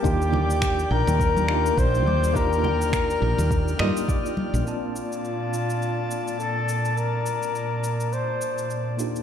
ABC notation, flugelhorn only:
X:1
M:4/4
L:1/8
Q:"Swing 16ths" 1/4=104
K:Bb
V:1 name="Flugelhorn"
G3 B3 c2 | B6 z2 | F6 A2 | B4 c3 z |]